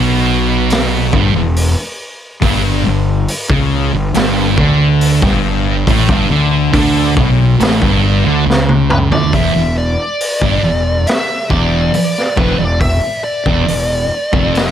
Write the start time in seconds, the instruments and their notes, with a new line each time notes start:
Already playing: fingered electric bass B1, distorted electric guitar B2
0.70 snare, open hi-hat
1.13 fingered electric bass G1, distorted electric guitar G2, kick
1.34 fingered electric bass E1, distorted electric guitar E2
1.56 open hi-hat
2.41 fingered electric bass G1, distorted electric guitar G2, kick, open hi-hat
2.85 fingered electric bass G1, distorted electric guitar G2
3.28 open hi-hat
3.50 fingered electric bass C#2, distorted electric guitar C#3, kick
3.93 fingered electric bass G1, distorted electric guitar G2
4.14 fingered electric bass G1, distorted electric guitar G2, snare, open hi-hat
4.58 fingered electric bass D2, distorted electric guitar D3, kick
5.01 open hi-hat
5.22 fingered electric bass G1, distorted electric guitar G2, kick, snare
5.87 fingered electric bass A1, distorted electric guitar A2, kick, open hi-hat
6.09 fingered electric bass G1, distorted electric guitar G2, kick
6.29 fingered electric bass D2, distorted electric guitar D3
6.73 fingered electric bass D2, distorted electric guitar D3, kick, open hi-hat
7.16 fingered electric bass B1, distorted electric guitar B2, kick
7.59 fingered electric bass A1, distorted electric guitar A2, snare, open hi-hat
7.82 fingered electric bass G1, distorted electric guitar G2, kick
8.24 fingered electric bass D2, distorted electric guitar D3
8.46 fingered electric bass C#2, distorted electric guitar C#3
8.50 snare
8.69 high tom
8.90 lead electric guitar B4, mid tom
9.11 fingered electric bass D2, distorted electric guitar D3, lead electric guitar D5, floor tom
9.33 fingered electric bass E1, distorted electric guitar E2, lead electric guitar E5, kick, open hi-hat
9.54 fingered electric bass E1, distorted electric guitar E2
9.78 lead electric guitar D5
10.20 open hi-hat
10.42 fingered electric bass G1, distorted electric guitar G2, kick
10.63 fingered electric bass E1, distorted electric guitar E2
11.07 lead electric guitar E5, snare, open hi-hat
11.50 fingered electric bass E1, distorted electric guitar E2, lead electric guitar D5, kick
11.93 lead electric guitar D5, muted distorted electric guitar stroke, muted fingered electric bass stroke, open hi-hat
12.18 snare
12.37 fingered electric bass F1, distorted electric guitar F2, lead electric guitar B4, kick
12.59 fingered electric bass E1, distorted electric guitar E2, lead electric guitar D5
12.81 lead electric guitar E5, kick, open hi-hat
13.24 lead electric guitar D5
13.46 fingered electric bass E1, distorted electric guitar E2, kick
13.68 fingered electric bass E1, distorted electric guitar E2, open hi-hat
14.33 fingered electric bass F1, distorted electric guitar F2, kick
14.54 lead electric guitar E5, snare, open hi-hat